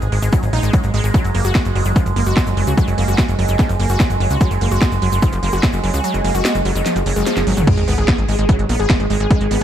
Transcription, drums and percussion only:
0.02 closed hi-hat, shaker
0.12 open hi-hat
0.22 closed hi-hat, shaker
0.33 kick, closed hi-hat, shaker
0.43 closed hi-hat, shaker
0.53 open hi-hat
0.63 closed hi-hat, shaker
0.73 kick, closed hi-hat, shaker
0.83 closed hi-hat, shaker
0.94 open hi-hat
1.04 closed hi-hat, shaker
1.14 kick, closed hi-hat, shaker
1.24 closed hi-hat, shaker
1.35 open hi-hat
1.44 closed hi-hat, shaker
1.55 kick, snare, closed hi-hat, shaker
1.65 closed hi-hat, shaker
1.75 open hi-hat
1.85 closed hi-hat, shaker
1.96 kick, closed hi-hat, shaker
2.06 closed hi-hat, shaker
2.16 open hi-hat
2.26 closed hi-hat, shaker
2.37 kick, snare, closed hi-hat, shaker
2.47 closed hi-hat, shaker
2.57 open hi-hat
2.67 closed hi-hat, shaker
2.77 kick, closed hi-hat, shaker
2.88 closed hi-hat, shaker
2.98 open hi-hat
3.08 closed hi-hat, shaker
3.18 kick, snare, closed hi-hat, shaker
3.29 closed hi-hat, shaker
3.39 open hi-hat
3.48 closed hi-hat, shaker
3.59 kick, snare, closed hi-hat, shaker
3.69 closed hi-hat, shaker
3.80 open hi-hat
3.89 closed hi-hat, shaker
4.00 kick, snare, closed hi-hat, shaker
4.10 closed hi-hat, shaker
4.20 open hi-hat
4.30 closed hi-hat, shaker
4.41 kick, closed hi-hat, shaker
4.51 closed hi-hat, shaker
4.61 open hi-hat
4.71 closed hi-hat, shaker
4.81 kick, snare, closed hi-hat, shaker
4.92 closed hi-hat, shaker
5.02 open hi-hat
5.12 closed hi-hat, shaker
5.22 kick, closed hi-hat, shaker
5.32 closed hi-hat, shaker
5.43 open hi-hat
5.52 closed hi-hat, shaker
5.63 kick, snare, closed hi-hat, shaker
5.73 closed hi-hat, shaker
5.84 open hi-hat
5.94 closed hi-hat, shaker
6.04 closed hi-hat, shaker
6.14 closed hi-hat, shaker
6.24 open hi-hat
6.35 closed hi-hat, shaker
6.45 snare, closed hi-hat, shaker
6.55 closed hi-hat, shaker
6.65 open hi-hat
6.75 closed hi-hat, shaker
6.86 snare, closed hi-hat, shaker
6.96 closed hi-hat, shaker
7.06 open hi-hat
7.16 closed hi-hat, shaker
7.26 snare, closed hi-hat, shaker
7.36 snare, closed hi-hat, shaker
7.47 open hi-hat
7.57 closed hi-hat, mid tom, shaker
7.67 kick, closed hi-hat, crash
7.78 closed hi-hat
7.88 open hi-hat
7.98 closed hi-hat
8.08 kick, snare, closed hi-hat
8.18 closed hi-hat
8.29 open hi-hat
8.39 closed hi-hat
8.49 kick, closed hi-hat
8.59 closed hi-hat
8.69 open hi-hat
8.80 closed hi-hat
8.90 kick, snare, closed hi-hat
9.00 closed hi-hat
9.10 open hi-hat
9.20 closed hi-hat
9.31 kick, closed hi-hat
9.41 closed hi-hat
9.51 open hi-hat

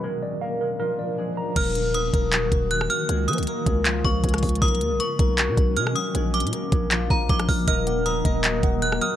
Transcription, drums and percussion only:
1.56 kick, closed hi-hat, crash
1.75 closed hi-hat
1.94 closed hi-hat
2.14 kick, closed hi-hat
2.32 clap, closed hi-hat
2.52 kick, closed hi-hat
2.71 closed hi-hat
2.81 cross-stick
2.90 closed hi-hat
3.09 closed hi-hat
3.28 closed hi-hat
3.33 closed hi-hat
3.38 closed hi-hat
3.43 closed hi-hat
3.47 closed hi-hat
3.66 kick, closed hi-hat
3.85 clap, closed hi-hat
4.05 kick
4.24 kick, closed hi-hat
4.29 closed hi-hat
4.34 cross-stick, closed hi-hat
4.38 closed hi-hat
4.43 kick, closed hi-hat, open hi-hat
4.49 closed hi-hat
4.55 closed hi-hat
4.62 kick, closed hi-hat
4.68 closed hi-hat
4.75 closed hi-hat
4.81 closed hi-hat
5.00 closed hi-hat
5.19 kick, closed hi-hat
5.38 clap, closed hi-hat
5.57 kick, closed hi-hat
5.77 closed hi-hat
5.87 cross-stick
5.96 closed hi-hat
6.15 closed hi-hat
6.34 closed hi-hat
6.40 closed hi-hat
6.47 closed hi-hat
6.53 closed hi-hat
6.72 kick, closed hi-hat
6.91 clap, closed hi-hat
7.10 kick
7.29 kick, closed hi-hat
7.39 cross-stick, closed hi-hat
7.49 kick, open hi-hat
7.68 kick, closed hi-hat
7.87 closed hi-hat
8.06 closed hi-hat
8.25 kick, closed hi-hat
8.44 clap, closed hi-hat
8.63 kick, closed hi-hat
8.82 closed hi-hat
8.92 cross-stick
9.01 closed hi-hat

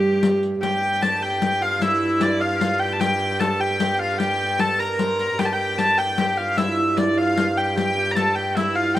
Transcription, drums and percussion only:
0.23 riq
0.43 riq
0.63 riq
1.03 riq
1.42 riq
1.82 riq
2.21 riq
2.61 riq
3.01 riq
3.41 riq
3.80 riq
4.20 riq
4.59 riq
4.99 riq
5.19 riq
5.39 riq
5.78 riq
6.18 riq
6.58 riq
6.98 riq
7.37 riq
7.77 riq
8.16 riq
8.57 riq

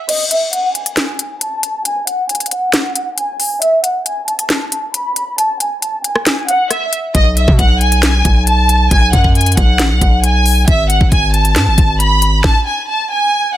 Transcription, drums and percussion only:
0.09 closed hi-hat, crash
0.31 closed hi-hat
0.53 closed hi-hat
0.75 closed hi-hat
0.86 closed hi-hat
0.97 snare, clap, closed hi-hat
1.19 closed hi-hat
1.41 closed hi-hat
1.63 closed hi-hat
1.85 closed hi-hat
2.07 closed hi-hat
2.29 closed hi-hat
2.35 closed hi-hat
2.40 closed hi-hat
2.46 closed hi-hat
2.51 closed hi-hat
2.73 snare, clap, closed hi-hat
2.96 closed hi-hat
3.18 closed hi-hat
3.40 open hi-hat
3.62 closed hi-hat
3.84 closed hi-hat
4.06 closed hi-hat
4.28 closed hi-hat
4.39 closed hi-hat
4.50 snare, clap, closed hi-hat
4.72 closed hi-hat
4.94 closed hi-hat
5.16 closed hi-hat
5.38 closed hi-hat
5.60 closed hi-hat
5.82 closed hi-hat
6.04 closed hi-hat
6.16 cross-stick
6.26 snare, clap, closed hi-hat
6.49 closed hi-hat
6.71 cross-stick, closed hi-hat
6.93 closed hi-hat
7.15 kick, closed hi-hat
7.37 closed hi-hat
7.48 kick
7.59 kick, closed hi-hat
7.81 closed hi-hat
7.92 closed hi-hat
8.03 snare, clap, closed hi-hat
8.25 kick, closed hi-hat
8.47 closed hi-hat
8.69 closed hi-hat
8.91 kick, closed hi-hat
9.13 kick, closed hi-hat
9.24 kick
9.35 closed hi-hat
9.41 closed hi-hat
9.46 closed hi-hat
9.52 closed hi-hat
9.57 kick, closed hi-hat
9.79 snare, clap, closed hi-hat
10.01 kick, closed hi-hat
10.24 closed hi-hat
10.46 open hi-hat
10.68 kick, closed hi-hat
10.90 closed hi-hat
11.01 kick
11.12 kick, closed hi-hat
11.34 closed hi-hat
11.45 closed hi-hat
11.56 snare, clap, closed hi-hat
11.78 kick, closed hi-hat
12.00 closed hi-hat
12.22 closed hi-hat
12.44 kick, snare

